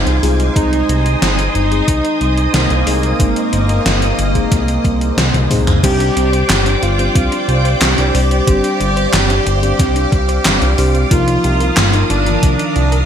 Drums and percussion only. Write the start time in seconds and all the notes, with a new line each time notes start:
0.07 closed hi-hat
0.23 open hi-hat
0.40 closed hi-hat
0.56 kick, closed hi-hat
0.73 closed hi-hat
0.89 closed hi-hat
1.06 closed hi-hat
1.22 snare, closed hi-hat
1.39 closed hi-hat
1.55 closed hi-hat
1.72 closed hi-hat
1.88 kick, closed hi-hat
2.05 closed hi-hat
2.21 closed hi-hat
2.38 closed hi-hat
2.54 snare, closed hi-hat
2.70 closed hi-hat
2.87 open hi-hat
3.03 closed hi-hat
3.20 kick, closed hi-hat
3.36 closed hi-hat
3.53 closed hi-hat
3.69 closed hi-hat
3.86 snare, closed hi-hat
4.02 closed hi-hat
4.19 closed hi-hat
4.35 kick, closed hi-hat
4.52 kick, snare, closed hi-hat
4.68 closed hi-hat
4.85 kick, closed hi-hat
5.01 closed hi-hat
5.18 snare, closed hi-hat
5.34 closed hi-hat, high tom
5.50 kick, open hi-hat, mid tom
5.67 closed hi-hat, mid tom
5.83 kick, closed hi-hat, crash
6.00 closed hi-hat
6.17 closed hi-hat
6.33 closed hi-hat
6.50 snare, clap, closed hi-hat
6.66 closed hi-hat
6.83 closed hi-hat
6.99 closed hi-hat
7.15 kick, closed hi-hat
7.32 closed hi-hat
7.49 closed hi-hat
7.65 closed hi-hat
7.82 snare, clap, closed hi-hat
7.98 closed hi-hat
8.15 open hi-hat
8.31 closed hi-hat
8.47 kick, closed hi-hat
8.64 closed hi-hat
8.81 closed hi-hat
8.97 closed hi-hat
9.13 snare, clap, closed hi-hat
9.30 closed hi-hat
9.47 closed hi-hat
9.63 closed hi-hat
9.79 kick, snare, closed hi-hat
9.96 closed hi-hat
10.12 kick, closed hi-hat
10.29 closed hi-hat
10.45 snare, clap, closed hi-hat
10.62 closed hi-hat
10.78 open hi-hat
10.95 closed hi-hat
11.11 kick, closed hi-hat
11.28 closed hi-hat
11.44 closed hi-hat
11.60 closed hi-hat
11.77 snare, clap, closed hi-hat
11.93 closed hi-hat
12.10 closed hi-hat
12.26 closed hi-hat
12.43 kick, closed hi-hat
12.59 closed hi-hat
12.76 closed hi-hat
12.92 closed hi-hat